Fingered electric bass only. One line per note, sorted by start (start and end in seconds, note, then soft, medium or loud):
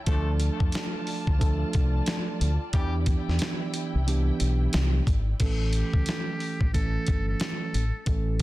0.07 0.48 D2 loud
0.61 0.70 F2 medium
1.28 1.63 D2 medium
1.75 2.00 C2 loud
2.41 2.57 D2 medium
2.74 3.15 E2 loud
3.29 3.38 E2 medium
3.95 4.30 C2 medium
4.41 4.66 B1 medium
4.74 5.00 C2 medium
5.07 5.33 G#1 medium
5.40 5.82 A1 loud
5.94 6.04 C#2 medium
6.61 6.96 A1 medium
7.08 7.33 G1 medium
7.75 7.90 A1 medium
8.07 8.42 A1 loud